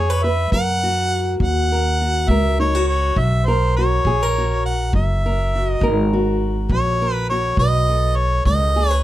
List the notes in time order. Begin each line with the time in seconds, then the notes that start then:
Already playing: F2 F4 C#5
0.10 B4
0.23 B4 E5
0.52 F#2 A#4 F#5, kick
0.83 F#4
1.40 D#2 F#3 F#5, kick
1.72 A#4
2.02 F#4
2.28 C#2 F#2 A#4 E5, kick
2.60 D#4 C#5
2.75 F#4
2.88 C#5
3.16 B1 F#3 E5, kick
3.46 A#4 C5
3.77 F#4 C#5
4.05 A#1 F#2 G#4, kick
4.22 A#4
4.38 F#4
4.66 F#5
4.93 F#1 F#3 E5, kick
5.26 A#4
5.56 F#4
5.69 D#5
5.81 G#1 F#2 A#4, kick
6.13 F#4
6.70 A#1 F#3 C#5, kick
7.02 A#4
7.14 B4
7.30 F#4 C#5
7.57 B1 B2 B4 D#5, kick
7.89 A4
8.16 C#5
8.45 C#2 F#3 D#5, kick
8.76 G#4
8.89 B4 C#5